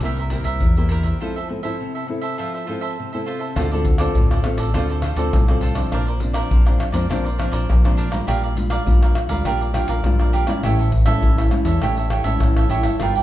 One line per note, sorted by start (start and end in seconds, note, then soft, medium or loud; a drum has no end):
0.01 0.40 C2 medium
0.01 0.58 C3 medium
0.01 0.27 A#3 soft
0.01 0.27 E4 soft
0.01 0.16 E4 medium
0.01 0.27 G4 medium
0.01 0.17 A#4 medium
0.01 pandeiro medium
0.01 maracas medium
0.01 surdo medium
0.05 0.17 C5 medium
0.05 0.17 E5 medium
0.17 0.31 A#4 soft
0.17 0.31 C5 soft
0.17 0.31 E5 soft
0.17 pandeiro soft
0.17 maracas soft
0.30 0.59 A#3 soft
0.30 0.59 E4 medium
0.30 0.45 E4 soft
0.30 0.59 G4 medium
0.30 0.45 A#4 soft
0.30 0.45 C5 medium
0.30 0.44 E5 soft
0.30 pandeiro medium
0.30 maracas medium
0.30 surdo soft
0.44 0.58 C2 medium
0.44 0.75 A#4 medium
0.44 0.75 C5 medium
0.44 0.74 E5 medium
0.44 pandeiro medium
0.44 maracas medium
0.60 1.12 E2 medium
0.60 1.18 G2 soft
0.60 pandeiro medium
0.60 maracas medium
0.60 surdo medium
0.76 1.16 A#3 medium
0.76 1.16 E4 medium
0.76 1.17 G4 medium
0.76 0.89 A#4 soft
0.76 0.90 C5 soft
0.76 0.90 E5 soft
0.76 pandeiro soft
0.76 maracas soft
0.89 1.04 E4 medium
0.89 1.04 A#4 medium
0.89 1.04 C5 medium
0.89 1.03 E5 medium
0.89 pandeiro medium
1.03 1.19 A#4 soft
1.03 1.19 C5 soft
1.03 1.18 E5 soft
1.03 pandeiro soft
1.03 maracas medium
1.03 surdo soft
1.20 1.77 F3 medium
1.20 1.38 C4 medium
1.20 1.39 E4 soft
1.20 1.34 F4 medium
1.20 1.34 A4 medium
1.20 1.39 A4 medium
1.20 1.34 C5 medium
1.20 1.35 E5 medium
1.36 1.48 A4 soft
1.36 1.48 C5 soft
1.36 1.49 E5 soft
1.49 1.60 C4 medium
1.49 1.60 E4 medium
1.49 1.60 A4 medium
1.49 muted cavaquinho stroke soft
1.63 2.04 C4 medium
1.63 2.04 E4 medium
1.63 1.93 A4 medium
1.63 2.04 A4 medium
1.63 1.92 C5 medium
1.63 1.92 E5 medium
1.81 2.36 C3 medium
1.95 2.07 A4 soft
1.95 2.07 C5 soft
1.95 2.07 E5 soft
2.08 2.63 C4 medium
2.08 2.63 E4 medium
2.08 2.64 A4 medium
2.08 muted cavaquinho stroke soft
2.22 2.37 A4 medium
2.22 2.37 C5 medium
2.22 2.36 E5 medium
2.38 2.95 F3 medium
2.38 2.52 F4 medium
2.38 2.52 A4 medium
2.38 2.52 C5 medium
2.38 2.52 E5 medium
2.54 2.66 A4 soft
2.54 2.66 C5 soft
2.54 2.67 E5 soft
2.66 2.96 C4 medium
2.66 2.96 E4 soft
2.66 2.81 F4 soft
2.66 2.81 A4 soft
2.66 2.96 A4 medium
2.66 2.81 C5 medium
2.66 2.80 E5 medium
2.81 3.11 A4 medium
2.81 3.11 C5 medium
2.81 3.10 E5 medium
2.99 3.54 C3 medium
3.13 3.53 C4 medium
3.13 3.53 E4 medium
3.13 3.25 A4 soft
3.13 3.53 A4 medium
3.13 3.26 C5 soft
3.13 3.26 E5 soft
3.26 3.40 F4 medium
3.26 3.40 A4 medium
3.26 3.39 C5 medium
3.26 3.38 E5 medium
3.39 3.55 A4 soft
3.39 3.54 C5 soft
3.39 3.54 E5 soft
3.56 4.06 D2 medium
3.56 4.13 D3 medium
3.56 3.66 C4 medium
3.56 3.70 F4 medium
3.56 3.66 F4 medium
3.56 3.70 A4 medium
3.56 3.66 A4 medium
3.56 3.70 C5 medium
3.56 3.70 D5 medium
3.56 pandeiro medium
3.56 tamborim medium
3.56 maracas medium
3.56 surdo medium
3.71 3.97 C4 medium
3.71 3.97 F4 medium
3.71 3.84 A4 soft
3.71 3.97 A4 medium
3.71 3.84 C5 soft
3.71 3.85 D5 soft
3.71 pandeiro soft
3.71 maracas soft
3.85 muted cavaquinho stroke soft
3.85 pandeiro medium
3.85 maracas medium
3.85 surdo medium
3.98 4.40 C4 medium
3.98 4.40 F4 medium
3.98 4.40 A4 medium
3.98 4.29 A4 medium
3.98 4.29 C5 medium
3.98 4.28 D5 medium
3.98 pandeiro medium
3.98 tamborim medium
3.98 maracas medium
4.15 4.40 D2 medium
4.15 4.72 A2 medium
4.15 pandeiro medium
4.15 maracas medium
4.15 surdo medium
4.31 4.43 A4 soft
4.31 4.44 C5 soft
4.31 4.44 D5 soft
4.31 pandeiro soft
4.31 tamborim medium
4.31 maracas soft
4.44 4.69 C4 medium
4.44 4.70 F4 medium
4.44 4.70 A4 medium
4.44 muted cavaquinho stroke soft
4.44 pandeiro medium
4.44 tamborim medium
4.57 4.71 A1 medium
4.57 4.73 A4 medium
4.57 4.72 C5 medium
4.57 4.72 D5 medium
4.57 pandeiro medium
4.57 maracas medium
4.74 5.12 D2 medium
4.74 5.30 D3 medium
4.74 5.02 C4 medium
4.74 4.87 F4 medium
4.74 5.02 F4 medium
4.74 4.88 A4 medium
4.74 5.02 A4 medium
4.74 4.88 C5 medium
4.74 4.88 D5 medium
4.74 pandeiro medium
4.74 tamborim medium
4.74 maracas medium
4.74 surdo medium
4.89 5.02 A4 soft
4.89 5.03 C5 soft
4.89 5.03 D5 soft
4.89 pandeiro soft
4.89 maracas soft
5.02 5.17 F4 medium
5.02 5.17 A4 medium
5.02 5.17 C5 medium
5.02 5.16 D5 medium
5.02 pandeiro medium
5.02 tamborim medium
5.02 maracas medium
5.16 5.29 D2 medium
5.16 5.42 C4 medium
5.16 5.43 F4 medium
5.16 5.43 A4 medium
5.16 5.47 A4 medium
5.16 5.46 C5 medium
5.16 5.46 D5 medium
5.16 pandeiro medium
5.16 maracas medium
5.33 5.83 C2 loud
5.33 5.89 A2 medium
5.33 pandeiro medium
5.33 tamborim medium
5.33 maracas medium
5.33 surdo loud
5.48 5.73 C4 medium
5.48 5.73 F4 medium
5.48 5.61 A4 soft
5.48 5.74 A4 medium
5.48 5.62 C5 soft
5.48 5.62 D5 soft
5.48 pandeiro soft
5.48 tamborim medium
5.48 maracas soft
5.61 5.76 F4 medium
5.61 5.76 A4 medium
5.61 5.75 C5 medium
5.61 5.74 D5 medium
5.61 pandeiro medium
5.61 maracas medium
5.75 6.01 F3 medium
5.75 6.02 C4 medium
5.75 6.02 D4 medium
5.75 5.90 A4 soft
5.75 5.90 C5 soft
5.75 5.90 D5 soft
5.75 pandeiro medium
5.75 tamborim medium
5.75 maracas medium
5.92 6.42 A#1 medium
5.92 6.48 A#2 medium
5.92 6.05 D4 medium
5.92 6.06 A#4 medium
5.92 6.06 C5 medium
5.92 6.06 D5 medium
5.92 pandeiro medium
5.92 tamborim medium
5.92 maracas medium
5.92 surdo medium
6.07 6.20 A#4 soft
6.07 6.20 C5 soft
6.07 6.20 D5 medium
6.07 pandeiro soft
6.07 maracas soft
6.20 6.51 F3 medium
6.20 6.61 C4 medium
6.20 6.61 D4 medium
6.20 muted cavaquinho stroke soft
6.20 pandeiro medium
6.34 6.64 A#4 medium
6.34 6.64 C5 medium
6.34 6.63 D5 medium
6.34 pandeiro medium
6.34 tamborim medium
6.34 maracas medium
6.51 6.76 A#1 medium
6.51 6.66 F3 medium
6.51 pandeiro medium
6.51 maracas medium
6.51 surdo medium
6.65 6.91 F3 medium
6.65 6.91 C4 medium
6.65 6.92 D4 medium
6.65 6.78 A#4 soft
6.65 6.78 C5 soft
6.65 6.79 D5 soft
6.65 pandeiro soft
6.65 tamborim medium
6.65 maracas soft
6.79 muted cavaquinho stroke soft
6.79 pandeiro medium
6.79 tamborim medium
6.79 maracas medium
6.92 7.06 F2 medium
6.92 7.05 F3 medium
6.92 7.05 C4 medium
6.92 7.05 D4 medium
6.92 7.08 A#4 medium
6.92 7.08 C5 medium
6.92 7.07 D5 medium
6.92 pandeiro medium
6.92 maracas medium
7.10 7.47 A#1 medium
7.10 7.66 A#2 medium
7.10 7.28 F3 medium
7.10 7.28 C4 medium
7.10 7.23 D4 medium
7.10 7.28 D4 medium
7.10 7.23 A#4 medium
7.10 7.24 C5 medium
7.10 7.23 D5 medium
7.10 pandeiro medium
7.10 tamborim medium
7.10 maracas medium
7.10 surdo medium
7.25 7.37 A#4 soft
7.25 7.38 C5 soft
7.25 7.38 D5 soft
7.25 pandeiro soft
7.25 maracas soft
7.38 7.67 F3 medium
7.38 7.67 C4 medium
7.38 7.52 D4 soft
7.38 7.67 D4 medium
7.38 7.52 A#4 medium
7.38 7.51 C5 medium
7.38 7.50 D5 medium
7.38 pandeiro medium
7.38 tamborim medium
7.52 7.65 A#1 medium
7.52 7.82 A#4 medium
7.52 7.82 C5 medium
7.52 7.81 D5 medium
7.52 pandeiro medium
7.52 maracas medium
7.69 8.19 A#1 loud
7.69 7.84 F3 medium
7.69 pandeiro medium
7.69 tamborim medium
7.69 maracas medium
7.69 surdo loud
7.84 8.09 F3 medium
7.84 8.09 C4 medium
7.84 8.09 D4 medium
7.84 7.96 A#4 soft
7.84 7.97 C5 soft
7.84 7.97 D5 medium
7.84 pandeiro soft
7.84 tamborim medium
7.84 maracas soft
7.97 8.11 D4 medium
7.97 8.11 A#4 medium
7.97 8.10 C5 medium
7.97 8.10 D5 medium
7.97 pandeiro medium
7.97 maracas medium
8.11 8.52 G3 medium
8.11 8.52 D4 medium
8.11 8.53 F4 medium
8.11 8.26 A#4 soft
8.11 8.26 C5 medium
8.11 8.25 D5 soft
8.11 pandeiro medium
8.11 tamborim medium
8.11 maracas medium
8.27 8.78 A#1 medium
8.27 8.84 A#2 medium
8.27 8.41 G4 medium
8.27 8.41 A#4 medium
8.27 8.41 D5 medium
8.27 8.42 F5 medium
8.27 pandeiro medium
8.27 tamborim medium
8.27 maracas medium
8.27 surdo medium
8.43 8.56 A#4 soft
8.43 8.57 D5 soft
8.43 8.56 F5 soft
8.43 pandeiro soft
8.43 maracas soft
8.57 8.82 G3 medium
8.57 8.82 D4 soft
8.57 8.82 F4 medium
8.57 muted cavaquinho stroke soft
8.57 pandeiro medium
8.57 maracas medium
8.70 9.00 A#4 medium
8.70 9.00 D5 medium
8.70 8.99 F5 medium
8.70 pandeiro medium
8.70 tamborim medium
8.70 maracas medium
8.86 9.12 A#1 medium
8.86 9.43 A#2 medium
8.86 9.26 G3 medium
8.86 9.26 D4 medium
8.86 9.27 F4 medium
8.86 pandeiro medium
8.86 maracas medium
8.86 surdo medium
9.02 9.14 A#4 soft
9.02 9.14 D5 soft
9.02 9.15 F5 soft
9.02 pandeiro soft
9.02 tamborim medium
9.02 maracas soft
9.15 muted cavaquinho stroke soft
9.15 pandeiro medium
9.15 tamborim medium
9.29 9.42 D2 medium
9.29 9.70 G3 medium
9.29 9.70 D4 medium
9.29 9.70 F4 medium
9.29 9.44 A#4 medium
9.29 9.44 D5 medium
9.29 9.44 F5 medium
9.29 pandeiro medium
9.29 maracas medium
9.45 9.83 A#1 medium
9.45 10.02 A#2 medium
9.45 9.59 G4 medium
9.45 9.60 A#4 medium
9.45 9.60 D5 medium
9.45 9.60 F5 medium
9.45 pandeiro medium
9.45 tamborim medium
9.45 maracas medium
9.45 surdo medium
9.61 9.73 A#4 soft
9.61 9.74 D5 soft
9.61 9.74 F5 soft
9.61 pandeiro soft
9.61 maracas soft
9.74 10.00 G3 medium
9.74 10.00 D4 medium
9.74 10.00 F4 medium
9.74 9.88 G4 soft
9.74 9.88 A#4 medium
9.74 9.88 D5 medium
9.74 9.87 F5 medium
9.74 pandeiro medium
9.74 tamborim medium
9.74 maracas medium
9.88 10.01 A#1 medium
9.88 10.18 A#4 medium
9.88 10.18 D5 medium
9.88 10.17 F5 medium
9.88 pandeiro medium
9.88 maracas medium
10.04 10.54 A#1 loud
10.04 10.61 A#2 medium
10.04 10.44 G3 medium
10.04 10.45 D4 medium
10.04 10.45 F4 medium
10.04 pandeiro medium
10.04 tamborim medium
10.04 maracas medium
10.04 surdo loud
10.19 10.32 A#4 soft
10.19 10.33 D5 medium
10.19 10.33 F5 soft
10.19 pandeiro soft
10.19 tamborim medium
10.19 maracas soft
10.33 10.47 G4 medium
10.33 10.47 A#4 medium
10.33 10.47 D5 medium
10.33 10.46 F5 medium
10.33 pandeiro medium
10.33 maracas medium
10.47 10.88 G3 medium
10.47 10.88 C#4 medium
10.47 10.88 E4 medium
10.47 10.63 A#4 soft
10.47 10.62 D5 soft
10.47 10.62 F5 medium
10.47 pandeiro medium
10.47 tamborim medium
10.47 maracas medium
10.63 11.14 A1 medium
10.63 11.20 A2 medium
10.63 10.77 G4 medium
10.63 10.77 A4 medium
10.63 10.78 C#5 medium
10.63 10.78 E5 medium
10.63 pandeiro medium
10.63 tamborim medium
10.63 maracas medium
10.63 surdo medium
10.79 10.91 A4 soft
10.79 10.92 C#5 soft
10.79 10.92 E5 medium
10.79 pandeiro soft
10.79 maracas soft
10.92 muted cavaquinho stroke soft
10.92 pandeiro medium
10.92 maracas medium
10.92 surdo medium
11.06 11.47 G3 medium
11.06 11.47 C#4 medium
11.06 11.47 E4 medium
11.06 11.36 A4 medium
11.06 11.36 C#5 medium
11.06 11.35 E5 medium
11.06 pandeiro medium
11.06 tamborim medium
11.06 maracas medium
11.22 11.47 A1 medium
11.22 11.79 E3 medium
11.22 pandeiro medium
11.22 maracas medium
11.22 surdo medium
11.38 11.51 A4 soft
11.38 11.51 C#5 soft
11.38 11.51 E5 soft
11.38 pandeiro soft
11.38 tamborim medium
11.38 maracas soft
11.51 11.69 G3 medium
11.51 11.69 C#4 medium
11.51 11.69 E4 medium
11.51 muted cavaquinho stroke soft
11.51 pandeiro medium
11.51 tamborim medium
11.65 11.78 E2 medium
11.65 11.80 A4 soft
11.65 11.80 C#5 medium
11.65 11.80 E5 medium
11.65 pandeiro medium
11.65 maracas medium
11.81 12.19 A1 medium
11.81 12.38 A2 medium
11.81 12.09 G3 soft
11.81 12.09 C#4 medium
11.81 12.10 E4 medium
11.81 11.95 G4 medium
11.81 11.96 A4 medium
11.81 11.96 C#5 medium
11.81 11.96 E5 medium
11.81 pandeiro medium
11.81 tamborim medium
11.81 maracas medium
11.81 surdo medium
11.97 12.10 A4 soft
11.97 12.11 C#5 soft
11.97 12.11 E5 soft
11.97 pandeiro soft
11.97 maracas soft
12.10 12.25 G4 soft
12.10 12.24 A4 medium
12.10 12.24 C#5 medium
12.10 12.23 E5 medium
12.10 pandeiro medium
12.10 tamborim medium
12.24 12.37 A1 medium
12.24 12.65 G3 medium
12.24 12.65 C#4 medium
12.24 12.65 E4 medium
12.24 12.54 A4 medium
12.24 12.54 C#5 medium
12.24 12.53 E5 medium
12.24 pandeiro medium
12.24 maracas medium
12.40 12.66 A1 loud
12.40 12.97 E3 medium
12.40 pandeiro medium
12.40 tamborim medium
12.40 maracas medium
12.40 surdo medium
12.56 12.69 A4 soft
12.56 12.70 C#5 soft
12.56 12.70 E5 medium
12.56 pandeiro soft
12.56 tamborim medium
12.56 maracas soft
12.68 12.83 A1 medium
12.68 12.87 G3 medium
12.68 12.87 C#4 medium
12.68 12.87 E4 medium
12.68 12.84 G4 medium
12.68 12.84 A4 medium
12.68 12.83 C#5 medium
12.68 12.82 E5 medium
12.68 pandeiro medium
12.68 maracas medium
12.83 12.97 G1 medium
12.83 12.99 A4 soft
12.83 12.98 C#5 soft
12.83 12.98 E5 soft
12.83 pandeiro medium
12.83 tamborim medium
12.83 maracas medium
12.99 13.23 G1 medium
12.99 13.23 G3 medium
12.99 13.23 D4 medium
12.99 13.23 F4 medium
12.99 13.14 F4 medium
12.99 13.23 A#4 medium
12.99 13.14 A#4 medium
12.99 13.14 D5 medium
12.99 13.15 G5 medium
12.99 pandeiro medium
12.99 tamborim medium
12.99 maracas medium
12.99 surdo medium
13.15 13.23 A#4 soft
13.15 13.23 D5 soft
13.15 13.23 G5 soft
13.15 pandeiro soft
13.15 maracas soft